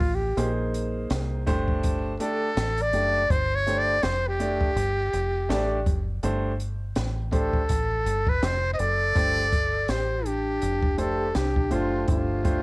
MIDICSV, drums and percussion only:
0, 0, Header, 1, 2, 480
1, 0, Start_track
1, 0, Key_signature, -2, "minor"
1, 0, Tempo, 731707
1, 248, Time_signature, 4, 2, 24, 8
1, 8282, End_track
2, 0, Start_track
2, 0, Title_t, "Drums"
2, 0, Note_on_c, 9, 46, 45
2, 3, Note_on_c, 9, 36, 88
2, 66, Note_off_c, 9, 46, 0
2, 69, Note_off_c, 9, 36, 0
2, 244, Note_on_c, 9, 42, 81
2, 310, Note_off_c, 9, 42, 0
2, 487, Note_on_c, 9, 42, 69
2, 553, Note_off_c, 9, 42, 0
2, 723, Note_on_c, 9, 42, 81
2, 727, Note_on_c, 9, 38, 112
2, 788, Note_off_c, 9, 42, 0
2, 792, Note_off_c, 9, 38, 0
2, 966, Note_on_c, 9, 42, 68
2, 968, Note_on_c, 9, 36, 88
2, 1031, Note_off_c, 9, 42, 0
2, 1033, Note_off_c, 9, 36, 0
2, 1102, Note_on_c, 9, 36, 77
2, 1168, Note_off_c, 9, 36, 0
2, 1203, Note_on_c, 9, 42, 90
2, 1209, Note_on_c, 9, 36, 88
2, 1269, Note_off_c, 9, 42, 0
2, 1274, Note_off_c, 9, 36, 0
2, 1444, Note_on_c, 9, 42, 82
2, 1510, Note_off_c, 9, 42, 0
2, 1686, Note_on_c, 9, 42, 86
2, 1687, Note_on_c, 9, 38, 109
2, 1752, Note_off_c, 9, 38, 0
2, 1752, Note_off_c, 9, 42, 0
2, 1821, Note_on_c, 9, 42, 55
2, 1886, Note_off_c, 9, 42, 0
2, 1922, Note_on_c, 9, 42, 61
2, 1987, Note_off_c, 9, 42, 0
2, 2167, Note_on_c, 9, 36, 123
2, 2167, Note_on_c, 9, 42, 79
2, 2233, Note_off_c, 9, 36, 0
2, 2233, Note_off_c, 9, 42, 0
2, 2409, Note_on_c, 9, 42, 64
2, 2474, Note_off_c, 9, 42, 0
2, 2641, Note_on_c, 9, 42, 75
2, 2645, Note_on_c, 9, 38, 113
2, 2707, Note_off_c, 9, 42, 0
2, 2711, Note_off_c, 9, 38, 0
2, 2886, Note_on_c, 9, 42, 68
2, 2952, Note_off_c, 9, 42, 0
2, 3022, Note_on_c, 9, 36, 84
2, 3088, Note_off_c, 9, 36, 0
2, 3127, Note_on_c, 9, 42, 88
2, 3193, Note_off_c, 9, 42, 0
2, 3368, Note_on_c, 9, 42, 83
2, 3433, Note_off_c, 9, 42, 0
2, 3609, Note_on_c, 9, 42, 88
2, 3610, Note_on_c, 9, 38, 120
2, 3675, Note_off_c, 9, 42, 0
2, 3676, Note_off_c, 9, 38, 0
2, 3846, Note_on_c, 9, 36, 97
2, 3846, Note_on_c, 9, 42, 66
2, 3912, Note_off_c, 9, 36, 0
2, 3912, Note_off_c, 9, 42, 0
2, 4087, Note_on_c, 9, 42, 82
2, 4152, Note_off_c, 9, 42, 0
2, 4328, Note_on_c, 9, 42, 68
2, 4394, Note_off_c, 9, 42, 0
2, 4563, Note_on_c, 9, 42, 79
2, 4567, Note_on_c, 9, 38, 117
2, 4628, Note_off_c, 9, 42, 0
2, 4632, Note_off_c, 9, 38, 0
2, 4806, Note_on_c, 9, 42, 75
2, 4807, Note_on_c, 9, 36, 90
2, 4871, Note_off_c, 9, 42, 0
2, 4873, Note_off_c, 9, 36, 0
2, 4943, Note_on_c, 9, 36, 85
2, 5008, Note_off_c, 9, 36, 0
2, 5045, Note_on_c, 9, 42, 93
2, 5050, Note_on_c, 9, 36, 86
2, 5110, Note_off_c, 9, 42, 0
2, 5115, Note_off_c, 9, 36, 0
2, 5290, Note_on_c, 9, 42, 83
2, 5356, Note_off_c, 9, 42, 0
2, 5423, Note_on_c, 9, 36, 84
2, 5488, Note_off_c, 9, 36, 0
2, 5527, Note_on_c, 9, 42, 93
2, 5528, Note_on_c, 9, 38, 109
2, 5593, Note_off_c, 9, 42, 0
2, 5594, Note_off_c, 9, 38, 0
2, 5766, Note_on_c, 9, 42, 67
2, 5832, Note_off_c, 9, 42, 0
2, 6007, Note_on_c, 9, 42, 77
2, 6008, Note_on_c, 9, 36, 115
2, 6072, Note_off_c, 9, 42, 0
2, 6074, Note_off_c, 9, 36, 0
2, 6247, Note_on_c, 9, 42, 65
2, 6249, Note_on_c, 9, 36, 97
2, 6312, Note_off_c, 9, 42, 0
2, 6314, Note_off_c, 9, 36, 0
2, 6483, Note_on_c, 9, 42, 75
2, 6487, Note_on_c, 9, 38, 102
2, 6548, Note_off_c, 9, 42, 0
2, 6552, Note_off_c, 9, 38, 0
2, 6728, Note_on_c, 9, 42, 66
2, 6794, Note_off_c, 9, 42, 0
2, 6965, Note_on_c, 9, 42, 89
2, 7030, Note_off_c, 9, 42, 0
2, 7102, Note_on_c, 9, 36, 91
2, 7167, Note_off_c, 9, 36, 0
2, 7205, Note_on_c, 9, 42, 79
2, 7271, Note_off_c, 9, 42, 0
2, 7445, Note_on_c, 9, 42, 83
2, 7446, Note_on_c, 9, 38, 106
2, 7511, Note_off_c, 9, 42, 0
2, 7512, Note_off_c, 9, 38, 0
2, 7585, Note_on_c, 9, 36, 83
2, 7650, Note_off_c, 9, 36, 0
2, 7681, Note_on_c, 9, 42, 65
2, 7746, Note_off_c, 9, 42, 0
2, 7923, Note_on_c, 9, 42, 79
2, 7927, Note_on_c, 9, 36, 105
2, 7988, Note_off_c, 9, 42, 0
2, 7992, Note_off_c, 9, 36, 0
2, 8166, Note_on_c, 9, 42, 64
2, 8168, Note_on_c, 9, 36, 95
2, 8232, Note_off_c, 9, 42, 0
2, 8234, Note_off_c, 9, 36, 0
2, 8282, End_track
0, 0, End_of_file